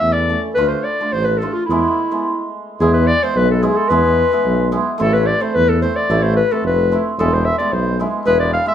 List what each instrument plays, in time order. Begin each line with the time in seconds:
0.00 tuba E2, clarinet E5
0.13 clarinet D5
0.29 hammered dulcimer A3 C#4 E4
0.54 tuba D2, hammered dulcimer A3 D4 F4, clarinet B4
0.68 clarinet C5
0.84 clarinet D5
1.00 hammered dulcimer A3 D4 F4
1.12 tuba A1, clarinet C5
1.24 clarinet B4
1.38 clarinet A4
1.42 hammered dulcimer A3 D4 F4
1.53 clarinet F4
1.66 tuba E2, clarinet E4
1.70 hammered dulcimer G#3 B3 E4
2.11 hammered dulcimer G#3 B3 E4
2.80 tuba E2, hammered dulcimer G#3 B3 E4, clarinet G#4
2.93 clarinet B4
3.07 clarinet D5
3.22 hammered dulcimer G#3 B3 E4, clarinet C5
3.36 tuba B1, clarinet B4
3.50 clarinet A4
3.62 hammered dulcimer G#3 B3 E4, clarinet G#4
3.77 clarinet A4
3.89 tuba E2, hammered dulcimer G#3 B3 E4, clarinet B4
4.31 hammered dulcimer G#3 B3 E4
4.45 tuba B1
4.72 hammered dulcimer G#3 B3 E4
4.98 tuba A1, hammered dulcimer A3 C4 E4, clarinet A4
5.13 clarinet B4
5.26 clarinet D5
5.40 hammered dulcimer A3 C4 E4, clarinet C5
5.54 tuba E2, clarinet B4
5.69 clarinet A4
5.82 hammered dulcimer A3 C4 E4, clarinet C5
5.96 clarinet D5
6.09 tuba A1, hammered dulcimer A3 C4 E4
6.23 clarinet C5
6.36 clarinet B4
6.51 hammered dulcimer A3 C4 E4, clarinet A4
6.63 tuba F1, clarinet B4
6.92 hammered dulcimer A3 C4 E4
7.18 tuba E1, hammered dulcimer G#3 B3 E4, clarinet A4
7.33 clarinet C5
7.45 clarinet E5
7.58 hammered dulcimer G#3 B3 E4, clarinet D5
7.72 tuba B1, clarinet C5
8.00 hammered dulcimer G#3 B3 E4
8.25 tuba E1, hammered dulcimer G#3 B3 E4, clarinet B4
8.40 clarinet D5
8.53 clarinet F5
8.66 hammered dulcimer G#3 B3 E4, clarinet E5